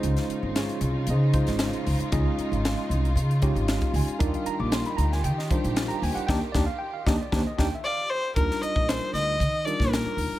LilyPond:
<<
  \new Staff \with { instrumentName = "Violin" } { \time 4/4 \key ees \major \tempo 4 = 116 r1 | r1 | r1 | r2. d''8 c''8 |
bes'8 ees''8 c''8 ees''4 d''8 bes'4 | }
  \new Staff \with { instrumentName = "Tine electric piano" } { \time 4/4 \key ees \major << { r4 <des' f' aes' des''>4 <ees' aes' c'' ees''>4. r8 | r2 r8 des''8 f''8 aes''8 | d''16 f''16 bes''16 d'''16 c'''16 ces'''16 bes''16 aes''16 g''16 ees''16 r8. bes''16 aes''16 ges''16 | g''16 bes'16 d''16 f''16 g''16 f''16 ees''16 d''16 c''16 ees''16 g''16 fes''16 f''8 r8 |
r1 | } \\ { <aes des' ees' f' c''>4. r4 <aes des' ees' f' c''>4. | <aes des' ees' f' ees''>2 r8 <aes des' ees' f' g'>4. | <g d' ees' f' bes'>2 r8 <g d' ees' f' c''>4. | <d' ees' g'>8 <d' ees' g'>8 r8 <d' ees' g'>8 <d' ees' g'>8 <d' ees' g'>8 r4 |
<g d' ees' f' bes'>2 r8 <g d' ees' f' bes'>4. | } >> }
  \new Staff \with { instrumentName = "String section" } { \time 4/4 \key ees \major <des ees' f'>1~ | <des ees' f'>1 | <ees g'>1~ | <ees g'>1 |
r1 | }
  \new Staff \with { instrumentName = "Upright bass" } { \clef bass \time 4/4 \key ees \major des,16 r8 aes,,8 r16 c,8 des8. aes,,8 r16 des,16 r16 | des,16 r8 aes,,8 r16 c,8 des8. aes,,8 r16 des,16 r16 | ees,16 r8 bes,,8 r16 d,8 ees8. bes,,8 r16 ees,16 r16 | ees,16 r16 ees,16 r8. ees,16 r16 ees,16 r16 ees,16 r4 r16 |
ees,16 r8 bes,,8 r16 d,8 ees8. bes,,8 r16 ees,16 r16 | }
  \new DrumStaff \with { instrumentName = "Drums" } \drummode { \time 4/4 hh16 <hh sn>16 hh8 <hh sn>16 hh16 hh8 hh8 <hh bd>16 <hh sn>16 <hh sn>16 hh16 hho16 hh16 | <hh bd>8 hh16 hh16 <hh sn>8 hh16 hh16 hh16 hh16 <hh bd>16 hh16 <hh sn>16 <hh bd>16 hho16 hh16 | <hh bd>16 hh16 hh8 <hh sn>16 hh16 hh16 sn16 hh16 sn16 <hh bd>16 hh16 <hh sn>16 hh16 hho16 hh16 | <bd sn>8 <bd sn>8 r8 <bd sn>8 <bd sn>8 <bd sn>8 r4 |
<hh bd>16 sn16 hh16 bd16 <hh sn>8 <hh sn>8 <hh bd>8 hh16 <bd sn>16 <hh sn>8 hho8 | }
>>